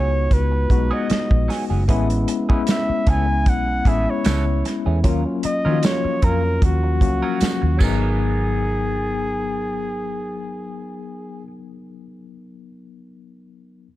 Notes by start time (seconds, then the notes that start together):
Already playing: C#2 F#3 G#3 B3 C#4 D#4 F4 F#4 G#4 C#5
0.31 C#2 B4, muted clean electric guitar stroke, kick, closed hi-hat
0.52 muted clean electric guitar stroke
0.70 B1 G#3 B3 D#4 F#4, kick, closed hi-hat
0.91 F#3 B3 C#4 G#4 D#5
1.09 muted clean electric guitar stroke, muted fingered electric bass stroke, snare, closed hi-hat
1.31 A#1, muted clean electric guitar stroke, kick
1.48 F#3 B3 C#4 G#4, snare, open hi-hat
1.70 F#1 F#3 B3 C#4 G#4
1.88 A1 E3 G#3 A3 B3 C#4 E4 G#4, kick, closed hi-hat
2.10 closed hi-hat
2.28 muted clean electric guitar stroke, closed hi-hat
2.49 E3 G#3 A3 B3 C#4 E4 G#4, kick
2.67 E5, snare, closed hi-hat, tambourine
2.89 muted clean electric guitar stroke, muted fingered electric bass stroke
3.07 C#2 E3 A3 C#4 G#4 G#5, kick, closed hi-hat
3.46 B1 F#5, kick, closed hi-hat
3.67 muted clean electric guitar stroke
3.85 A1 E3 G#3 A3 B3 C#4 E4 G#4 E5, kick, closed hi-hat
4.07 C#5, muted clean electric guitar stroke
4.25 C#2 E3 A3 C#4 A4, snare, closed hi-hat, tambourine
4.65 muted clean electric guitar stroke, snare, closed hi-hat
4.86 E2 E3 A3 C#4 G#4
5.03 D#2 F#3 A#3 C#4 F4 A#4, kick, closed hi-hat
5.26 muted clean electric guitar stroke
5.43 D#5, muted clean electric guitar stroke, muted fingered electric bass stroke, closed hi-hat
5.65 D#3 F3 F#3 A#3 C#4 F4 A#4
5.71 F#4
5.83 C#5, snare, closed hi-hat, tambourine
6.05 muted clean electric guitar stroke, muted fingered electric bass stroke
6.22 F2 F#3 C#4 F4 A#4, kick, closed hi-hat
6.62 D#2 F#4, muted clean electric guitar stroke, kick, closed hi-hat
6.83 muted clean electric guitar stroke
7.01 C#2 F#3 A#3 C#4 F#4, kick, closed hi-hat
7.22 F#3 C#4 F4 A#4
7.40 muted clean electric guitar stroke, muted fingered electric bass stroke, snare, closed hi-hat, tambourine
7.62 D#2, muted clean electric guitar stroke
7.78 G#1 F#3 B3 G#4 A#4, kick, crash, tambourine
7.82 B3 D#4 A#4